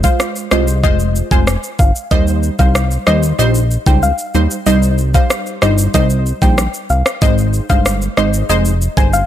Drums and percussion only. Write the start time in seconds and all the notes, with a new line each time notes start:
0.04 kick, shaker
0.20 cross-stick, shaker
0.36 shaker
0.51 cross-stick, shaker
0.68 shaker
0.84 kick, shaker
0.99 shaker
1.16 shaker
1.31 kick, shaker
1.47 cross-stick, shaker
1.63 shaker
1.79 kick, shaker
1.95 shaker
2.11 kick, shaker
2.28 shaker
2.43 shaker
2.59 kick, shaker
2.75 cross-stick, shaker
2.91 shaker
3.07 cross-stick, shaker
3.23 shaker
3.39 shaker
3.55 shaker
3.71 shaker
3.86 kick, shaker
4.03 shaker
4.18 shaker
4.34 shaker
4.51 shaker
4.66 shaker
4.83 shaker
4.98 shaker
5.14 kick, shaker
5.30 cross-stick, shaker
5.46 shaker
5.62 cross-stick, shaker
5.78 shaker
5.94 kick, shaker
6.10 shaker
6.26 shaker
6.42 kick, shaker
6.58 cross-stick, shaker
6.74 shaker
6.90 shaker
7.06 cross-stick, shaker
7.22 kick, shaker
7.38 shaker
7.54 shaker
7.70 kick, shaker
7.86 cross-stick, shaker
8.02 shaker
8.17 cross-stick, shaker
8.33 shaker
8.50 shaker
8.65 shaker
8.82 shaker
8.97 kick, shaker
9.13 shaker